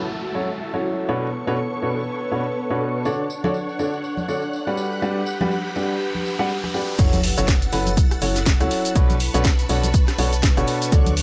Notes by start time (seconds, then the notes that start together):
Already playing: E4 F#4 A4 E5 F#5 A5 C#6, downlifter
0.35 F#3 C#4 E4 F#4 A4 C#5
0.74 F#3 C#4 E4 F#4 A4 C#5
1.09 B2 B3 D4 F#4 A4 B4 C#5 C#6
1.17 B4
1.47 B2 D4 F#4 A4 B4 C#5
1.77 A5
1.82 B2 D4 F#4 A4 B4 C#5
2.32 B2 D4 F#4 A4 B4 C#5
2.70 B2 D4 F#4 A4 B4 C#5
2.81 shaker
3.05 D3 D4 F#4 A4 C#5 D5 F#5, tambourine, riser
3.09 A4
3.30 tambourine
3.44 D3 D4 F#4 A4 C#5 D5, tambourine, high conga
3.54 tambourine
3.69 tambourine
3.79 D3 D4 F#4 A4 C#5 D5, tambourine
3.83 F#5
3.94 tambourine
4.04 tambourine
4.17 tambourine, high conga
4.28 D3 D4 F#4 A4 C#5 D5, tambourine
4.42 tambourine
4.53 tambourine, shaker
4.67 G3 D4 F#4 G4 B4 D5, tambourine
4.77 G4 B5, tambourine
4.92 tambourine
5.02 G3 D4 F#4 G4 B4 D5, tambourine
5.07 G4
5.19 B4
5.26 tambourine, shaker
5.41 G3 D4 F#4 G4 B4 D5, tambourine, high conga
5.51 tambourine
5.65 tambourine
5.76 G3 D4 F#4 G4 B4 D5, tambourine, shaker
5.90 tambourine
6.01 tambourine
6.14 tambourine, high conga
6.25 tambourine, shaker
6.39 G3 D4 F#4 G4 B4 F#5, tambourine
6.49 tambourine
6.64 cross-stick, tambourine, high conga
6.74 D4 F#4 G4 B4 D5, tambourine
6.88 tambourine
6.99 F#1 F#3 C#4 E4 F#4 A4 C#5 F#5 E6 A6, kick, closed hi-hat, tambourine, crash, sub drop, shaker
7.13 closed hi-hat, high conga, shaker
7.23 A4, open hi-hat, tambourine
7.38 F#1 F#3 C#4 E4 F#4 A4 C#5, closed hi-hat, shaker
7.48 kick, snare, closed hi-hat, tambourine, shaker
7.62 closed hi-hat, tambourine, shaker
7.73 F#1 F#3 C#4 E4 F#4 A4 B4, snare, open hi-hat, tambourine, shaker
7.86 closed hi-hat, tambourine, high conga, shaker
7.97 kick, closed hi-hat, tambourine, shaker
8.11 cross-stick, closed hi-hat, tambourine, shaker
8.22 F#1 F#3 C#4 E4 F#4 A4 C#5, open hi-hat, tambourine, shaker
8.35 snare, closed hi-hat, tambourine, shaker
8.46 kick, snare, closed hi-hat, tambourine, shaker
8.61 C#2 F#3 C#4 E4 F#4 A4 C#5, cross-stick, closed hi-hat, tambourine, shaker
8.71 snare, open hi-hat, tambourine, shaker
8.85 closed hi-hat, tambourine, shaker
8.96 B1 B2 D4 F#4 A4 B4 C#5 A5 B5 C#6, kick, closed hi-hat, tambourine, shaker
9.10 closed hi-hat, high conga, shaker
9.16 A5, tambourine
9.20 open hi-hat, shaker
9.26 B4
9.34 B1 B2 D4 F#4 A4 B4 C#5, closed hi-hat, tambourine, shaker
9.44 kick, snare, closed hi-hat, tambourine, shaker
9.58 closed hi-hat, tambourine, shaker
9.69 B1 B2 D4 F#4 A4 B4 C#5, open hi-hat, tambourine, shaker
9.83 closed hi-hat, tambourine, high conga, shaker
9.94 kick, closed hi-hat, tambourine, shaker
10.08 cross-stick, snare, closed hi-hat, tambourine, shaker
10.18 B1 B2 D4 F#4 A4 B4 C#5, open hi-hat, tambourine, shaker
10.32 closed hi-hat, tambourine, shaker
10.43 kick, snare, closed hi-hat, tambourine, shaker
10.57 F#1 B2 D4 F#4 A4 B4 C#5, cross-stick, closed hi-hat, tambourine, shaker
10.67 open hi-hat, tambourine, shaker
10.82 closed hi-hat, tambourine, shaker
10.92 D2 D3 D4 F#4 A4 C#5 D5 F#6, kick, closed hi-hat, tambourine, shaker
11.06 A4, closed hi-hat, high conga, shaker
11.17 open hi-hat, tambourine